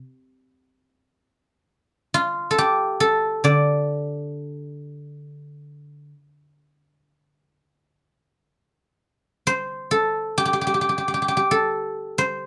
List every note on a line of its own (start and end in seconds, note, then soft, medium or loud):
2.14 4.67 F4 medium
2.51 3.00 A4 medium
2.58 4.94 G4 medium
3.00 5.20 A4 medium
3.44 6.11 D3 medium
3.44 7.99 D5 medium
9.47 11.45 C5 medium
9.91 11.51 A4 medium
10.38 10.45 G4 medium
10.45 10.53 G4 soft
10.53 10.61 G4 soft
10.61 10.66 G4 soft
10.67 10.74 G4 soft
10.74 10.81 G4 soft
10.81 10.89 G4 soft
10.89 10.97 G4 soft
10.98 11.07 G4 soft
11.08 11.14 G4 soft
11.14 11.21 G4 soft
11.22 11.28 G4 soft
11.28 11.36 G4 soft
11.37 12.46 G4 soft
11.51 12.46 A4 medium
12.18 12.46 C5 medium